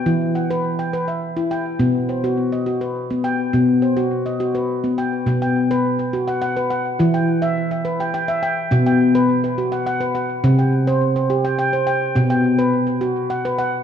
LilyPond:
<<
  \new Staff \with { instrumentName = "Handpan" } { \time 3/4 \tempo 4 = 104 << { g''16 r16 fis''8. g''8 e''8. g''8~ | g''16 r16 c''8. dis''8 b'8. g''8~ | g''16 r16 c''8. dis''8 b'8. g''8~ | g''16 g''8. r16 b'8 fis''16 fis''8 fis''8~ |
fis''16 g''8. r16 e''8 g''16 g''8 g''8~ | g''16 g''8. r16 b'8 fis''16 fis''8 fis''8~ | fis''16 g''8. r16 c''8 g''16 g''8 g''8~ | g''16 g''8. r16 b'8. fis''8 fis''8 | } \\ { e'8 r16 b'8 r16 b'8 r16 e'8 r16 | b8 r16 fis'8 r16 fis'8 r16 b8 r16 | b8 r16 fis'8 r16 fis'8 r16 b8 r16 | b8 r16 b'8 r16 fis'8 r16 b'8 r16 |
e'8 r16 e''8 r16 b'8 r16 e''8 r16 | b8 r16 b'8 r16 fis'8 r16 b'8 r16 | c'8 r16 c''8 r16 g'8 r16 c''8 r16 | b8 r16 b'8 r16 fis'8 r16 b'8 r16 | } >> }
  \new Staff \with { instrumentName = "Handpan" } { \clef bass \time 3/4 e8 r2 r8 | b,8 r2 r8 | b,8 r2 r8 | b,2 r4 |
e2 r4 | b,2 r4 | c2 r4 | b,2 r4 | }
>>